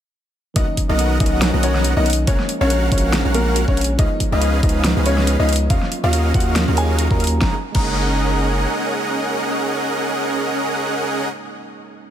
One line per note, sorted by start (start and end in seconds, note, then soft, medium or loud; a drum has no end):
0.54 0.63 B1 loud
0.54 1.17 D#3 medium
0.54 1.18 F#3 medium
0.54 1.18 A#3 medium
0.54 0.66 B3 medium
0.54 0.80 D#4 medium
0.54 0.66 F#4 medium
0.54 0.66 A#4 medium
0.54 0.80 D#5 loud
0.54 0.66 D#5 medium
0.54 0.66 F#5 medium
0.54 kick loud
0.54 closed hi-hat medium
0.58 1.19 C#4 medium
0.77 kick medium
0.77 closed hi-hat medium
0.89 1.18 B1 loud
0.89 1.18 B3 medium
0.89 1.13 D#4 medium
0.89 1.18 F#4 medium
0.89 1.18 A#4 medium
0.89 1.18 D#5 medium
0.89 1.13 D#5 medium
0.89 1.18 F#5 medium
0.99 closed hi-hat medium
1.19 1.51 B1 loud
1.19 1.39 D#3 medium
1.19 1.39 F#3 medium
1.19 1.40 A#3 medium
1.19 1.51 B3 medium
1.19 1.40 C#4 loud
1.19 1.53 D#4 medium
1.19 1.51 F#4 medium
1.19 1.53 D#5 medium
1.19 kick loud
1.19 closed hi-hat medium
1.26 closed hi-hat medium
1.40 2.24 D#3 medium
1.40 2.25 F#3 medium
1.40 2.26 A#4 medium
1.40 snare loud
1.40 closed hi-hat medium
1.44 2.26 C#4 medium
1.54 1.94 B1 loud
1.54 1.94 B3 medium
1.54 1.94 F#4 medium
1.54 1.94 A#4 medium
1.54 1.94 D#5 medium
1.54 1.94 F#5 loud
1.63 1.87 C#4 medium
1.63 1.87 C#5 loud
1.63 closed hi-hat medium
1.75 snare soft
1.84 closed hi-hat medium
1.97 2.26 B1 loud
1.97 2.10 B3 medium
1.97 2.20 D#4 medium
1.97 2.10 F#4 medium
1.97 2.10 A#4 medium
1.97 2.10 D#5 medium
1.97 2.20 D#5 medium
1.97 2.10 F#5 loud
2.06 closed hi-hat medium
2.10 closed hi-hat medium
2.13 closed hi-hat medium
2.26 2.35 A#1 loud
2.26 2.89 F3 medium
2.26 2.89 G#3 medium
2.26 2.90 A#3 medium
2.26 2.51 C#4 medium
2.26 2.37 C#4 medium
2.26 2.91 C#4 medium
2.26 2.37 F#4 medium
2.26 2.37 A#4 medium
2.26 2.51 C#5 loud
2.26 2.37 F5 medium
2.26 2.37 F#5 medium
2.26 kick loud
2.26 closed hi-hat medium
2.39 snare soft
2.49 closed hi-hat medium
2.61 2.90 A#1 loud
2.61 2.89 C#4 medium
2.61 2.84 C#4 medium
2.61 2.89 F#4 medium
2.61 2.89 A#4 medium
2.61 2.84 C#5 loud
2.61 2.89 F5 medium
2.61 2.89 F#5 medium
2.70 closed hi-hat medium
2.91 3.23 A#1 loud
2.91 3.10 F3 medium
2.91 3.11 G#3 medium
2.91 3.11 A#3 medium
2.91 3.22 C#4 medium
2.91 3.24 C#4 medium
2.91 3.11 C#4 loud
2.91 3.22 F#4 medium
2.91 3.22 A#4 medium
2.91 3.24 C#5 medium
2.91 3.22 F5 medium
2.91 3.22 F#5 loud
2.91 kick loud
2.91 closed hi-hat medium
2.98 closed hi-hat medium
3.13 3.96 G#3 medium
3.13 3.97 A#3 medium
3.13 3.98 C#4 medium
3.13 snare loud
3.13 closed hi-hat medium
3.25 3.66 A#1 loud
3.25 3.65 C#4 medium
3.25 3.65 F#4 medium
3.25 3.65 A#4 medium
3.25 3.65 F5 medium
3.25 3.65 F#5 loud
3.34 3.58 A#3 medium
3.34 3.58 A#4 loud
3.34 closed hi-hat medium
3.56 closed hi-hat medium
3.68 3.97 A#1 medium
3.68 3.81 C#4 medium
3.68 3.92 C#4 medium
3.68 3.81 F#4 medium
3.68 3.81 A#4 medium
3.68 3.92 C#5 medium
3.68 3.81 F5 medium
3.68 3.81 F#5 loud
3.68 kick medium
3.77 closed hi-hat medium
3.81 closed hi-hat medium
3.84 closed hi-hat medium
3.97 4.06 C#2 loud
3.97 4.60 F3 medium
3.97 4.61 G#3 medium
3.97 4.61 B3 medium
3.97 4.09 C#4 medium
3.97 4.23 D#4 medium
3.97 4.09 G#4 medium
3.97 4.09 B4 medium
3.97 4.09 D#5 medium
3.97 4.23 D#5 loud
3.97 4.09 F5 medium
3.97 kick loud
3.97 closed hi-hat medium
4.01 4.62 D#4 medium
4.20 kick medium
4.20 closed hi-hat medium
4.32 4.61 C#2 medium
4.32 4.61 C#4 medium
4.32 4.56 D#4 medium
4.32 4.61 G#4 medium
4.32 4.61 B4 medium
4.32 4.61 D#5 medium
4.32 4.56 D#5 loud
4.32 4.61 F5 medium
4.42 closed hi-hat medium
4.62 4.94 C#2 loud
4.62 4.81 F3 medium
4.62 4.82 G#3 medium
4.62 4.83 B3 medium
4.62 4.94 C#4 medium
4.62 4.96 D#4 medium
4.62 4.83 D#4 loud
4.62 4.94 G#4 medium
4.62 4.94 B4 medium
4.62 4.96 D#5 medium
4.62 kick loud
4.62 closed hi-hat medium
4.69 closed hi-hat medium
4.83 5.67 F3 medium
4.83 5.68 G#3 medium
4.83 5.68 B3 medium
4.83 snare loud
4.83 closed hi-hat medium
4.87 5.69 D#4 medium
4.96 5.37 C#2 loud
4.96 5.37 C#4 medium
4.96 5.37 G#4 medium
4.96 5.37 B4 medium
4.96 5.37 D#5 medium
4.96 5.37 F5 loud
5.06 5.30 C#4 medium
5.06 5.30 C#5 loud
5.06 closed hi-hat medium
5.18 snare soft
5.27 closed hi-hat medium
5.39 5.68 C#2 medium
5.39 5.53 C#4 medium
5.39 5.63 D#4 medium
5.39 5.53 G#4 medium
5.39 5.53 B4 medium
5.39 5.53 D#5 medium
5.39 5.63 D#5 medium
5.39 5.53 F5 loud
5.49 closed hi-hat medium
5.53 closed hi-hat medium
5.56 closed hi-hat medium
5.68 5.78 D#2 loud
5.68 6.31 F#3 medium
5.68 6.32 A#3 medium
5.68 5.80 C#4 medium
5.68 6.33 C#4 medium
5.68 5.94 F4 medium
5.68 6.33 F4 medium
5.68 5.80 F#4 medium
5.68 5.80 A#4 medium
5.68 5.80 D#5 medium
5.68 5.80 F5 medium
5.68 5.94 F5 loud
5.68 kick loud
5.68 closed hi-hat medium
5.82 snare soft
5.92 closed hi-hat medium
6.04 6.33 D#2 loud
6.04 6.32 C#4 medium
6.04 6.27 F4 medium
6.04 6.32 F#4 medium
6.04 6.32 A#4 medium
6.04 6.32 D#5 medium
6.04 6.32 F5 medium
6.04 6.27 F5 loud
6.13 closed hi-hat medium
6.33 6.66 D#2 loud
6.33 6.53 F#3 medium
6.33 6.53 A#3 medium
6.33 6.65 C#4 medium
6.33 6.54 C#4 medium
6.33 6.54 F4 loud
6.33 6.65 F#4 medium
6.33 6.67 F#4 medium
6.33 6.65 A#4 medium
6.33 6.65 D#5 medium
6.33 6.67 F#5 medium
6.33 kick loud
6.33 closed hi-hat soft
6.40 closed hi-hat medium
6.55 6.74 F#3 medium
6.55 6.75 A#3 medium
6.55 6.76 C#4 medium
6.55 6.76 F4 medium
6.55 snare loud
6.55 closed hi-hat medium
6.68 7.08 D#2 loud
6.68 7.08 C#4 medium
6.68 7.08 F#4 medium
6.68 7.08 A#4 medium
6.68 7.08 D#5 medium
6.68 7.08 F5 loud
6.75 7.38 F#3 loud
6.75 7.39 A#3 medium
6.75 7.40 C#4 medium
6.75 7.01 G#4 medium
6.75 7.01 G#5 loud
6.75 closed hi-hat medium
6.79 7.40 D#4 loud
6.99 closed hi-hat medium
7.11 7.40 D#2 medium
7.11 7.24 C#4 medium
7.11 7.24 F#4 medium
7.11 7.24 A#4 medium
7.11 7.34 A#4 medium
7.11 7.24 D#5 medium
7.11 7.24 F5 loud
7.11 7.34 A#5 medium
7.11 kick medium
7.20 closed hi-hat soft
7.24 closed hi-hat medium
7.27 closed hi-hat medium
7.38 7.55 F#1 loud
7.38 7.53 G#3 medium
7.38 7.54 A#3 medium
7.38 7.55 C#4 medium
7.38 7.55 G#4 medium
7.38 7.55 A#4 medium
7.38 7.55 D#5 medium
7.38 7.55 F#5 loud
7.38 7.55 A#5 loud
7.38 kick loud
7.38 snare medium
7.42 7.55 C#4 medium
7.42 7.56 D#4 loud
7.72 8.66 F#1 loud
7.72 11.25 G#3 medium
7.72 11.27 A#3 medium
7.72 11.28 C#4 medium
7.72 11.29 C#4 medium
7.72 11.28 G#4 medium
7.72 11.28 A#4 medium
7.72 11.28 D#5 medium
7.72 11.28 F#5 medium
7.72 11.28 A#5 medium
7.72 kick loud
7.72 crash medium
7.78 11.31 D#4 loud